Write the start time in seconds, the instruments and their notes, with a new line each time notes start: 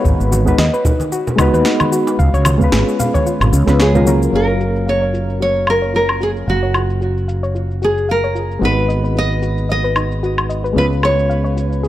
Already playing: synth keys G#3 B3 D#4 F#4 B4
0.05 fretless electric bass G#1, synth pluck D#4, kick, cabasa
0.20 fretless electric bass G#1, cabasa
0.32 synth pluck F#4, high conga, cabasa
0.45 synth keys G#3 B3 D#4 F#4 B4, kick, cabasa
0.58 fretless electric bass D#2, synth pluck D#5, snare, cabasa
0.74 synth pluck B4, cabasa
0.85 synth pluck D#4, kick, low conga, cabasa
1.00 high bongo, high conga, cabasa
1.12 synth pluck F#4, cabasa
1.27 high bongo, low conga, cabasa
1.36 fretless electric bass C#2, synth keys G#3 B3 D#4, synth pluck D#5, kick, cabasa, low woodblock
1.40 synth keys F#4 B4
1.53 fretless electric bass D#2, synth pluck B4, cabasa
1.65 synth pluck D#4, snare, cabasa
1.80 high conga, cabasa, low woodblock
1.92 synth pluck F#4, cabasa
2.07 high bongo, cabasa
2.19 fretless electric bass C#2, synth pluck F5, kick, cabasa
2.33 fretless electric bass C#2, synth pluck C#5, cabasa
2.45 synth pluck F4, high conga, cabasa, low woodblock
2.58 synth keys G#3 B3 C#4, kick, cabasa
2.62 synth keys F4 B4
2.72 fretless electric bass G#1, synth pluck G#4, snare, cabasa
2.88 cabasa
3.00 synth pluck F5, low conga, cabasa
3.14 synth pluck C#5, kick, high bongo, high conga, cabasa
3.26 synth pluck F4, cabasa
3.41 fretless electric bass G#1, low conga, cabasa, low woodblock
3.52 fretless electric bass C#2, synth pluck F4, cabasa
3.66 fretless electric bass C#2, synth keys G#3 B3 C#4 F4 B4, synth pluck B4, snare, cabasa
3.80 nylon-string guitar G#4, synth pluck C#5, snare, cabasa
3.94 synth keys G#3 B3 C#4 F4 A#4, synth pluck F4, high bongo, high conga, low conga, cabasa
4.05 synth keys F#3 A#3 C#4 F4 A#4, synth pluck C#5, high bongo, cabasa
4.22 cabasa
4.31 fretless electric bass F#1, synth keys F#3 A#3 C#4, synth pluck F4, cabasa
4.35 nylon-string guitar A#4, synth keys A#4 F5
4.49 cabasa
4.60 synth pluck F#4, cabasa
4.76 cabasa
4.87 nylon-string guitar C#5, synth pluck F5, cabasa
5.02 synth pluck C#5, cabasa
5.13 synth pluck F4, cabasa
5.30 cabasa
5.40 synth pluck F#4, nylon-string guitar C#5, cabasa
5.56 cabasa
5.67 nylon-string guitar A#4, synth pluck F5, cabasa, low woodblock
5.82 synth pluck C#5, cabasa
5.94 synth pluck F4, nylon-string guitar A#4, cabasa
6.09 cabasa, low woodblock
6.21 synth pluck F#4, nylon-string guitar G#4, cabasa
6.37 cabasa
6.47 fretless electric bass F#1, nylon-string guitar F#4, synth pluck F5, cabasa
6.63 synth pluck C#5, cabasa
6.74 synth pluck F4, cabasa, low woodblock
6.90 cabasa
7.01 synth pluck F#4, cabasa
7.17 cabasa
7.28 synth pluck F5, cabasa
7.43 synth pluck C#5, cabasa
7.55 synth pluck F4, cabasa
7.71 cabasa
7.82 synth pluck F#4, nylon-string guitar G#4, cabasa
7.98 cabasa
8.09 nylon-string guitar A#4, synth pluck F5, cabasa
8.24 synth pluck C#5, cabasa
8.35 synth pluck F4, cabasa
8.51 cabasa
8.59 fretless electric bass G#1, synth keys G#3 B3 D#4, synth pluck F#4, cabasa
8.64 synth keys F#4 B4, nylon-string guitar B4
8.78 cabasa
8.88 synth pluck D#5, cabasa
9.04 synth pluck B4, cabasa
9.16 synth pluck D#4, nylon-string guitar D#5, cabasa
9.31 cabasa
9.42 synth pluck F#4, cabasa
9.58 cabasa
9.69 synth pluck D#5, nylon-string guitar D#5, cabasa
9.84 synth pluck B4, cabasa
9.96 synth pluck D#4, cabasa, low woodblock
10.12 cabasa
10.23 synth pluck F#4, cabasa
10.38 cabasa, low woodblock
10.49 synth pluck D#5, cabasa
10.64 synth pluck B4, cabasa
10.73 fretless electric bass C#2, synth keys G#3 B3 C#4, synth pluck F4
10.77 synth keys F4 B4, nylon-string guitar B4, cabasa
10.92 cabasa
11.03 synth pluck G#4, nylon-string guitar C#5, cabasa, low woodblock
11.19 cabasa
11.29 synth pluck F5, cabasa
11.44 synth pluck C#5, cabasa
11.56 synth pluck F4, cabasa
11.73 cabasa
11.83 synth pluck G#4, cabasa